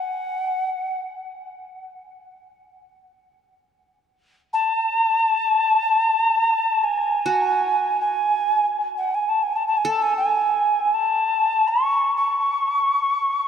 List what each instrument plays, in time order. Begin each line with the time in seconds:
Already playing: qanun F#4 A4, ocarina F#5
4.53 ocarina A5
6.84 ocarina G#5
7.26 qanun F#4
8.00 ocarina G#5
8.97 ocarina F#5
9.14 ocarina G#5
9.29 ocarina A5
9.42 ocarina G#5
9.56 ocarina A5
9.67 ocarina A5
9.77 ocarina G#5
9.85 qanun A4, ocarina A5
10.02 ocarina G#5
10.17 ocarina G#5
10.94 ocarina A5
11.68 ocarina C#6
12.17 ocarina C#6